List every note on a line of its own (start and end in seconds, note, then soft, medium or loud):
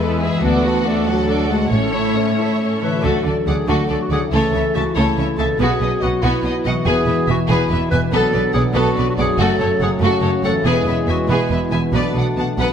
0.00 0.41 E2 soft
0.00 0.45 E3 soft
0.00 0.43 G#3 medium
0.00 0.22 B3 soft
0.00 0.20 B3 soft
0.00 0.45 E4 soft
0.00 0.20 E4 soft
0.00 0.22 A4 soft
0.00 0.45 B4 soft
0.00 0.22 B4 soft
0.20 0.43 B3 soft
0.20 0.46 B3 soft
0.20 0.43 E4 soft
0.20 0.42 G#4 soft
0.20 0.44 G#4 soft
0.24 0.45 E5 soft
0.42 1.69 D2 medium
0.42 0.83 D2 soft
0.42 1.74 D3 soft
0.42 0.85 B3 medium
0.42 0.63 D4 soft
0.42 1.07 F#4 medium
0.42 0.64 F#4 soft
0.42 0.63 A4 soft
0.42 0.65 D5 soft
0.65 1.27 D4 soft
0.65 0.86 F#4 soft
0.65 0.87 A4 soft
0.65 0.87 F#5 soft
0.86 1.08 A3 medium
0.86 1.07 D4 soft
0.86 1.08 F#4 soft
0.86 1.74 F#4 soft
0.86 1.08 A4 soft
0.86 1.08 D5 soft
1.06 1.50 F#3 medium
1.06 1.29 F#4 soft
1.06 1.70 A4 medium
1.06 2.36 A4 soft
1.06 1.29 A4 soft
1.06 1.28 F#5 soft
1.28 1.73 D4 soft
1.28 1.48 D4 soft
1.28 1.49 F#4 soft
1.28 1.49 A4 soft
1.28 1.49 D5 soft
1.49 1.71 G#3 medium
1.49 2.89 A3 soft
1.49 1.72 F#4 soft
1.49 1.72 A4 soft
1.49 1.72 F#5 soft
1.70 2.12 A1 soft
1.70 2.83 A2 soft
1.70 3.05 A2 soft
1.70 2.81 A3 medium
1.70 1.93 C#4 soft
1.70 1.93 A4 soft
1.70 1.92 C#5 soft
1.70 2.69 C#5 soft
1.93 2.59 C#4 soft
1.93 2.16 E4 soft
1.93 2.15 A4 soft
1.93 2.16 C#5 soft
1.93 2.16 E5 soft
2.15 2.37 C#4 soft
2.15 3.05 E4 soft
2.15 2.38 A4 soft
2.15 2.39 C#5 soft
2.37 2.60 E4 soft
2.37 2.98 A4 soft
2.37 2.61 A4 soft
2.37 2.60 C#5 soft
2.37 2.61 E5 soft
2.60 3.05 C#4 soft
2.60 2.81 C#4 soft
2.60 2.81 A4 soft
2.60 2.82 C#5 soft
2.81 4.25 D3 soft
2.81 3.05 E3 soft
2.81 3.04 E4 soft
2.81 3.04 A4 soft
2.81 3.05 B4 medium
2.81 3.04 C#5 soft
2.81 3.04 E5 soft
2.90 4.17 A3 soft
2.94 4.29 F#4 soft
2.99 4.27 D3 soft
2.99 4.26 A4 soft
2.99 3.23 A4 soft
3.03 3.11 D2 medium
3.03 3.11 D3 medium
3.03 4.28 F#3 soft
3.03 3.24 A3 medium
3.03 5.56 A3 soft
3.03 3.24 F#4 soft
3.03 3.46 A4 medium
3.03 5.56 A4 soft
3.24 3.33 D2 soft
3.24 3.32 D3 soft
3.24 3.34 A3 soft
3.24 3.34 A4 soft
3.24 3.34 D5 soft
3.46 3.55 D2 soft
3.46 3.55 D3 soft
3.46 3.54 A3 soft
3.46 3.68 G#4 medium
3.46 3.57 D5 soft
3.46 3.55 F#5 soft
3.67 3.76 D2 medium
3.67 3.75 D3 medium
3.67 3.87 A3 soft
3.67 3.88 F#4 medium
3.67 3.84 F#4 medium
3.67 3.88 A4 soft
3.89 3.98 D2 soft
3.89 3.97 D3 soft
3.89 3.98 A3 soft
3.89 3.97 A4 soft
3.89 3.97 D5 soft
4.01 4.11 F#4 medium
4.10 4.18 D2 soft
4.10 5.52 C#3 soft
4.10 4.19 D3 soft
4.10 4.20 A3 soft
4.10 4.21 G#4 medium
4.10 4.19 D5 soft
4.10 4.21 F#5 soft
4.18 5.55 A3 soft
4.22 5.57 E4 soft
4.27 4.39 C#2 soft
4.27 5.59 E3 soft
4.27 5.59 A4 soft
4.27 4.77 A4 medium
4.32 6.19 C#3 soft
4.32 4.41 C#3 soft
4.32 4.52 A3 soft
4.32 4.52 A4 medium
4.32 4.53 C#5 soft
4.53 4.61 C#2 soft
4.53 4.61 C#3 soft
4.53 4.63 A3 soft
4.53 4.61 C#5 soft
4.53 4.63 E5 soft
4.74 4.83 C#2 soft
4.74 4.83 C#3 soft
4.74 4.84 A3 soft
4.74 4.96 F#4 medium
4.74 4.82 E5 soft
4.74 4.84 A5 soft
4.95 5.05 C#2 medium
4.95 5.05 C#3 medium
4.95 5.16 A3 soft
4.95 5.39 E4 medium
4.95 5.15 A4 medium
4.95 5.15 C#5 medium
5.17 5.26 C#2 soft
5.17 5.25 C#3 soft
5.17 5.25 A3 soft
5.17 5.26 C#5 soft
5.17 5.26 E5 soft
5.38 5.46 C#2 soft
5.38 6.79 B2 soft
5.38 5.46 C#3 soft
5.38 5.46 A3 soft
5.38 5.59 A4 medium
5.38 5.47 E5 soft
5.38 5.46 A5 soft
5.46 6.71 B3 soft
5.50 6.83 D#5 soft
5.55 6.86 F#4 soft
5.55 5.79 B4 soft
5.59 5.67 B1 medium
5.59 5.67 B2 medium
5.59 6.85 F#3 soft
5.59 5.79 B3 soft
5.59 8.13 B3 soft
5.59 6.84 F#4 soft
5.59 5.81 F#4 medium
5.59 6.03 G#4 medium
5.80 5.88 B1 soft
5.80 5.88 B2 soft
5.80 5.90 B3 soft
5.80 5.89 B4 soft
5.80 5.90 D#5 soft
6.01 6.10 B1 soft
6.01 6.11 B2 soft
6.01 6.11 B3 soft
6.01 6.24 F#4 medium
6.01 6.09 D#5 soft
6.01 6.11 F#5 soft
6.22 6.31 B1 medium
6.22 8.12 B2 medium
6.22 6.31 B2 medium
6.22 6.43 B3 medium
6.22 6.54 E4 medium
6.22 6.42 F#4 medium
6.22 6.43 B4 medium
6.43 6.52 B1 soft
6.43 6.51 B2 soft
6.43 6.52 B3 soft
6.43 6.51 B4 soft
6.43 6.53 D#5 soft
6.57 6.69 E4 medium
6.65 6.73 B1 soft
6.65 6.73 B2 soft
6.65 8.05 E3 soft
6.65 6.73 B3 soft
6.65 6.88 F#4 medium
6.65 6.73 D#5 soft
6.65 6.74 F#5 medium
6.72 7.97 B3 soft
6.77 8.10 E4 soft
6.82 6.93 E2 medium
6.82 8.09 E3 soft
6.82 8.12 G#4 soft
6.86 6.95 E1 medium
6.86 7.06 B3 soft
6.86 8.13 E4 soft
6.86 7.06 G#4 medium
6.86 7.29 G#4 medium
6.86 7.06 B4 medium
7.06 7.14 E1 soft
7.06 7.14 E2 soft
7.06 7.16 B3 soft
7.06 7.14 B4 soft
7.06 7.16 E5 soft
7.27 7.36 E1 soft
7.27 7.36 E2 soft
7.27 7.37 B3 soft
7.27 7.40 F#4 medium
7.27 7.35 E5 soft
7.27 7.38 G#5 soft
7.48 7.57 E1 medium
7.48 7.58 E2 medium
7.48 7.69 B3 medium
7.48 7.90 E4 medium
7.48 7.69 G#4 medium
7.48 7.70 B4 medium
7.69 7.78 E1 soft
7.69 7.79 E2 soft
7.69 7.79 B3 soft
7.69 7.77 B4 soft
7.69 7.80 E5 medium
7.91 8.00 E1 medium
7.91 8.00 E2 soft
7.91 9.31 B2 soft
7.91 8.00 B3 soft
7.91 8.00 B4 medium
7.91 8.00 E5 soft
7.91 8.00 G#5 soft
7.99 9.33 B3 soft
8.04 9.36 D4 soft
8.08 9.33 F#4 soft
8.12 8.21 B1 medium
8.12 8.21 B2 medium
8.12 9.36 B2 soft
8.12 10.47 F#3 medium
8.12 8.32 B3 medium
8.12 9.37 B3 medium
8.12 9.37 D4 medium
8.12 8.33 A4 medium
8.12 8.53 A4 medium
8.12 8.32 B4 medium
8.32 8.42 B1 soft
8.32 8.41 B2 soft
8.32 8.42 B3 soft
8.32 8.43 B4 soft
8.32 8.40 D5 soft
8.53 8.63 B1 soft
8.53 8.63 B2 soft
8.53 8.62 B3 soft
8.53 8.64 G#4 medium
8.53 8.64 D5 soft
8.53 8.61 F#5 soft
8.74 8.84 B1 medium
8.74 8.83 B2 medium
8.74 8.94 B3 medium
8.74 9.06 F#4 medium
8.74 8.95 A4 medium
8.74 8.94 B4 medium
8.97 9.05 B1 soft
8.97 9.05 B2 soft
8.97 9.05 B3 medium
8.97 9.06 B4 soft
8.97 9.05 D5 soft
9.10 9.14 F#4 medium
9.18 9.26 B1 soft
9.18 10.58 F#2 soft
9.18 9.26 B2 soft
9.18 9.26 B3 soft
9.18 9.40 G#4 medium
9.18 9.26 D5 soft
9.18 9.26 F#5 medium
9.25 10.61 A3 soft
9.25 10.63 C#4 soft
9.34 10.62 A3 medium
9.34 10.62 C#4 medium
9.34 10.65 F#4 soft
9.38 9.47 F#1 medium
9.38 9.46 F#2 medium
9.38 11.26 C#3 medium
9.38 9.58 A3 medium
9.38 9.58 F#4 medium
9.38 9.59 A4 medium
9.38 9.81 A4 medium
9.59 9.67 F#1 soft
9.59 9.67 F#2 soft
9.59 9.68 A3 soft
9.59 9.68 A4 soft
9.59 9.68 C#5 soft
9.79 9.88 F#1 soft
9.79 9.87 F#2 soft
9.79 9.89 A3 soft
9.79 9.91 G#4 medium
9.79 9.90 C#5 soft
9.79 9.89 F#5 soft
9.99 10.09 F#1 medium
9.99 10.07 F#2 medium
9.99 10.21 A3 medium
9.99 10.22 F#4 medium
9.99 10.21 A4 medium
10.04 10.44 F#4 medium
10.21 10.29 F#1 soft
10.21 10.30 F#2 soft
10.21 10.30 A3 medium
10.21 10.30 A4 soft
10.21 10.30 C#5 medium
10.43 10.51 F#1 soft
10.43 10.51 F#2 soft
10.43 10.53 A3 soft
10.43 10.68 A4 medium
10.43 10.53 C#5 soft
10.43 10.52 F#5 medium
10.48 11.87 E2 soft
10.52 11.80 B3 soft
10.57 11.92 E4 soft
10.61 10.72 E1 medium
10.61 10.72 E2 medium
10.61 11.91 G#3 medium
10.61 12.73 B3 medium
10.61 11.94 G#4 soft
10.61 10.85 G#4 medium
10.66 10.85 B3 medium
10.66 11.92 E4 medium
10.66 11.11 G#4 medium
10.66 10.86 B4 medium
10.85 10.95 E1 soft
10.85 10.93 E2 soft
10.85 10.95 B3 soft
10.85 10.95 B4 soft
10.85 10.97 E5 soft
11.07 11.16 E1 soft
11.07 11.15 E2 soft
11.07 11.15 B3 soft
11.07 11.31 F#4 medium
11.07 11.16 E5 soft
11.07 11.16 G#5 soft
11.28 11.37 E1 medium
11.28 11.36 E2 medium
11.28 12.73 B2 medium
11.28 11.49 B3 medium
11.28 11.72 E4 medium
11.28 11.50 G#4 medium
11.28 11.49 B4 medium
11.50 11.58 E1 soft
11.50 11.58 E2 soft
11.50 11.58 B3 soft
11.50 11.59 B4 soft
11.50 11.60 E5 soft
11.71 11.80 E1 soft
11.71 11.79 E2 soft
11.71 11.80 B3 soft
11.71 11.84 E4 medium
11.71 11.80 E5 soft
11.71 11.79 G#5 soft
11.76 12.73 B2 soft
11.81 12.73 B3 soft
11.85 12.73 F#4 soft
11.90 12.01 B1 medium
11.90 12.01 B2 medium
11.90 12.73 A3 soft
11.90 12.14 B3 soft
11.90 12.73 F#4 soft
11.90 12.73 A4 soft
11.90 12.14 B4 soft
11.90 12.14 D5 medium
11.95 12.73 D4 medium
12.14 12.23 B1 soft
12.14 12.22 B2 soft
12.14 12.24 B3 soft
12.14 12.26 D5 soft
12.14 12.25 F#5 soft
12.37 12.45 B1 soft
12.37 12.45 B2 soft
12.37 12.46 B3 soft
12.37 12.47 F#5 soft
12.37 12.46 A5 soft
12.58 12.66 B1 medium
12.58 12.66 B2 soft
12.58 12.73 B3 soft
12.58 12.73 B4 medium
12.58 12.67 F#5 medium